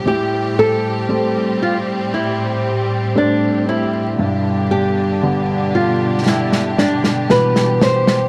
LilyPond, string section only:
\new Staff \with { instrumentName = "String section" } { \time 4/4 \key a \minor \tempo 4 = 58 <a, g c' g'>1 | <b, d d' g'>1 | }